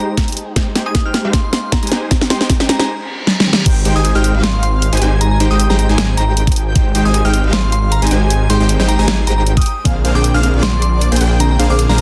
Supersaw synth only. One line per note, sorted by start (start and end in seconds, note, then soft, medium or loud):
0.00 0.54 G#3 medium
0.00 0.54 D#4 medium
0.00 0.54 G4 medium
0.00 0.54 C5 medium
0.00 0.54 G5 medium
0.56 0.66 G#3 medium
0.56 0.66 D#4 medium
0.56 0.66 G4 medium
0.56 0.66 C5 medium
0.56 0.66 G5 medium
0.76 0.84 G#3 medium
0.76 0.84 D#4 medium
0.76 0.84 G4 medium
0.76 0.84 C5 medium
0.76 0.85 G5 medium
0.86 1.03 G#3 medium
0.86 1.03 D#4 medium
0.86 1.03 G4 medium
0.86 1.03 C5 medium
0.86 1.03 G#5 medium
1.05 1.22 G#3 medium
1.05 1.22 D#4 medium
1.05 1.22 G4 medium
1.05 1.22 C5 medium
1.05 1.22 G5 loud
1.25 1.80 G#3 medium
1.25 1.80 D#4 medium
1.25 1.80 G4 medium
1.25 1.80 C5 medium
1.25 1.80 F5 loud
1.83 1.90 G#3 medium
1.83 1.90 D#4 medium
1.83 1.90 G4 medium
1.83 1.90 C5 medium
1.83 1.90 G#5 medium
1.92 2.28 G#3 medium
1.92 2.28 D#4 medium
1.92 2.28 G4 medium
1.92 2.28 C5 medium
1.92 2.28 G#5 medium
2.30 2.38 G#3 medium
2.30 2.38 D#4 medium
2.30 2.38 G4 medium
2.30 2.38 C5 medium
2.30 2.38 G5 loud
2.41 2.58 G#3 medium
2.41 2.58 D#4 medium
2.41 2.58 G4 medium
2.41 2.58 C5 medium
2.41 2.58 G5 medium
2.60 2.77 G#3 loud
2.60 2.77 D#4 medium
2.60 2.77 G4 medium
2.60 2.77 C5 medium
2.60 2.77 G5 loud
2.79 2.88 G#3 medium
2.79 2.88 D#4 medium
2.79 2.88 G4 medium
2.79 2.88 C5 medium
2.79 2.88 G#5 medium
3.66 3.76 G#3 medium
3.66 3.76 D#4 medium
3.66 3.76 G4 medium
3.66 3.76 C5 medium
3.66 3.76 G5 loud
3.85 3.94 G#3 medium
3.85 3.94 D#4 medium
3.85 3.94 G4 medium
3.85 3.94 C5 medium
3.85 3.94 G5 medium
3.96 4.13 G#3 medium
3.96 4.13 D#4 medium
3.96 4.13 G4 medium
3.96 4.13 C5 medium
3.96 4.13 G#5 medium
4.15 4.32 G#3 medium
4.15 4.32 D#4 medium
4.15 4.32 G4 medium
4.15 4.32 C5 medium
4.15 4.32 G5 loud
4.35 4.90 G#3 medium
4.35 4.90 D#4 medium
4.35 4.90 G4 medium
4.35 4.90 C5 medium
4.35 4.90 F5 loud
4.93 4.99 G#3 medium
4.93 4.99 D#4 medium
4.93 4.99 G4 medium
4.93 4.99 C5 medium
4.93 4.99 G#5 medium
5.01 5.38 G#3 medium
5.01 5.38 D#4 medium
5.01 5.38 G4 medium
5.01 5.38 C5 medium
5.01 5.38 G#5 medium
5.40 5.48 G#3 medium
5.40 5.48 D#4 medium
5.40 5.48 G4 medium
5.40 5.48 C5 medium
5.40 5.48 G5 loud
5.51 5.68 G#3 medium
5.51 5.67 D#4 medium
5.51 5.68 G4 medium
5.51 5.68 C5 medium
5.51 5.68 G5 medium
5.70 5.87 G#3 medium
5.70 5.87 D#4 medium
5.70 5.87 G4 medium
5.70 5.87 C5 medium
5.70 5.87 G5 loud
5.89 6.15 G#3 medium
5.89 6.15 D#4 medium
5.89 6.15 G4 medium
5.89 6.15 C5 medium
5.89 6.15 G#5 medium
6.18 6.74 G#3 medium
6.18 6.74 D#4 medium
6.18 6.74 G4 medium
6.18 6.73 C5 medium
6.18 6.74 G5 loud
6.76 6.85 G#3 medium
6.76 6.85 D#4 medium
6.76 6.85 G4 medium
6.76 6.85 C5 medium
6.76 6.85 G5 loud
6.95 7.04 G#3 medium
6.95 7.04 D#4 medium
6.95 7.04 G4 medium
6.95 7.04 C5 medium
6.95 7.04 G5 loud
7.05 7.22 G#3 medium
7.05 7.22 D#4 medium
7.05 7.22 G4 medium
7.05 7.22 C5 medium
7.05 7.22 G#5 medium
7.25 7.42 G#3 medium
7.25 7.42 D#4 medium
7.25 7.42 G4 medium
7.25 7.42 C5 medium
7.25 7.42 G5 loud
7.44 8.00 G#3 medium
7.44 8.00 D#4 medium
7.44 8.00 G4 medium
7.44 8.00 C5 medium
7.44 8.00 F5 loud
8.02 8.09 G#3 medium
8.02 8.09 D#4 medium
8.02 8.09 G4 medium
8.02 8.09 C5 medium
8.02 8.09 G#5 medium
8.11 8.48 G#3 medium
8.11 8.48 D#4 medium
8.11 8.48 G4 medium
8.11 8.48 C5 medium
8.11 8.48 G#5 medium
8.50 8.58 G#3 medium
8.50 8.58 D#4 medium
8.50 8.58 G4 medium
8.50 8.58 C5 medium
8.50 8.58 G5 loud
8.60 8.77 G#3 medium
8.60 8.77 D#4 medium
8.60 8.77 G4 medium
8.60 8.77 C5 medium
8.60 8.77 G5 medium
8.80 8.96 G#3 medium
8.80 8.96 D#4 medium
8.80 8.97 G4 medium
8.80 8.97 C5 medium
8.80 8.97 G5 loud
8.99 9.25 G#3 medium
8.99 9.25 D#4 medium
8.99 9.25 G4 medium
8.99 9.25 C5 medium
8.99 9.25 G#5 loud
9.27 9.65 G#3 medium
9.27 9.65 D#4 medium
9.27 9.65 G4 medium
9.27 9.65 C5 medium
9.27 9.65 G5 loud
9.85 9.95 A#3 medium
9.85 9.95 D4 medium
9.85 9.95 G#4 medium
9.85 9.95 C5 medium
9.85 9.95 F5 loud
10.05 10.14 A#3 medium
10.05 10.13 D4 medium
10.05 10.13 G#4 medium
10.05 10.13 C5 medium
10.05 10.14 F5 loud
10.15 10.32 A#3 medium
10.15 10.32 D4 medium
10.15 10.32 G#4 medium
10.15 10.32 C5 medium
10.15 10.32 G5 medium
10.34 10.51 A#3 loud
10.34 10.51 D4 medium
10.34 10.51 G#4 medium
10.34 10.51 C5 medium
10.34 10.51 F5 loud
10.54 11.09 A#3 medium
10.54 11.09 D4 medium
10.54 11.09 G#4 medium
10.54 11.09 C5 medium
10.54 11.09 D5 loud
11.12 11.19 A#3 medium
11.12 11.19 D4 medium
11.12 11.19 G#4 medium
11.12 11.19 C5 medium
11.12 11.19 G5 medium
11.21 11.57 A#3 medium
11.21 11.57 D4 medium
11.21 11.57 G#4 medium
11.21 11.57 C5 medium
11.21 11.57 G5 medium
11.59 11.67 A#3 medium
11.59 11.67 D4 medium
11.59 11.67 G#4 medium
11.59 11.67 C5 medium
11.59 11.67 F5 loud
11.70 11.87 A#3 medium
11.70 11.87 D4 medium
11.70 11.87 G#4 medium
11.70 11.87 C5 medium
11.70 11.87 F5 medium
11.89 12.01 A#3 loud
11.89 12.01 D4 medium
11.89 12.01 G#4 medium
11.89 12.01 C5 medium
11.89 12.01 F5 loud